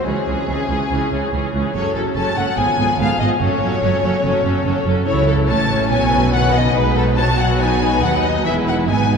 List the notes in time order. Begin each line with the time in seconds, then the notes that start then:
0.05 C#2 E3 C#4 G#4
0.27 C#2 E3 C#4 G#4
0.48 C#2 E3 C#4 G#4
0.69 C#2 E3 C#4 G#4
0.90 C#2 E3 C#4 G#4
1.11 C#2 E3 C#4 G#4
1.33 C#2 E3 C#4 G#4
1.53 C#2 E3 C#4 G#4
1.75 F#1 F#2 F#3 C#4 A4 C#5
1.95 F#1 F#2 F#3 C#4 A4
2.16 F#1 F#2 F#3 C#4 A4 A5
2.37 F#1 F#2 F#3 C#4 A4 F#5
2.57 G#1 G#2 F3 B3 G#4 G#5
2.78 G#1 G#2 F3 B3 G#4
2.99 G#1 G#2 F3 B3 G#4 F5
3.20 G#1 G#2 F3 B3 G#4 D#5
3.40 F#1 F#2 F#3 C#4 A4 C#5
3.62 F#1 F#2 F#3 C#4 A4
3.82 F#1 F#2 F#3 C#4 A4
4.03 F#1 F#2 F#3 C#4 A4
4.24 F#1 F#2 F#3 C#4 A4
4.44 F#1 F#2 F#3 C#4 A4
4.65 F#1 F#2 F#3 C#4 A4
4.85 F#1 F#2 F#3 C#4 A4
5.06 C#2 C#3 E3 E4 A4 C#5
5.28 A4
5.48 A1 A2 C#4 C#5 A5
5.71 C#4
5.90 B1 B2 F#3 C#5 G#5
6.13 B4
6.34 D#3 B3 F#5
6.55 D#5
6.76 B1 B2 G#3 D#4 B4
6.97 A4
7.17 F#3 F#4 C#5 A5
7.39 F#5
7.60 D#4 B4 G#5
7.82 D#4
8.03 D#2 F#3 F#5
8.24 D#5
8.45 E1 E2 G#3 E4 B4 E5
8.67 F#5
8.88 G#1 G#2 B3 D#4 B4 G#5